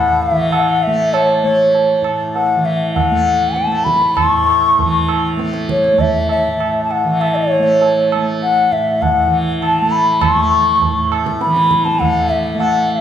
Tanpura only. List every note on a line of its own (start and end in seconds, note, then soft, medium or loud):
0.00 2.01 A2 medium
0.00 0.31 E3 soft
0.00 0.87 A3 medium
0.31 2.56 E3 medium
0.87 1.44 A3 medium
1.44 3.11 A3 medium
2.02 4.23 A2 medium
2.56 4.79 E3 medium
3.11 3.67 A3 medium
3.67 5.37 A3 medium
4.24 6.47 A2 medium
4.80 7.04 E3 medium
5.37 5.93 A3 medium
5.93 7.59 A3 medium
6.47 8.71 A2 medium
7.04 9.25 E3 medium
7.59 8.15 A3 medium
8.15 9.82 A3 medium
8.71 10.90 A2 medium
9.26 11.45 E3 medium
9.82 10.35 A3 medium
10.35 11.99 A3 medium
10.91 13.01 A2 medium
11.45 13.01 E3 medium
11.99 12.54 A3 medium
12.54 13.01 A3 medium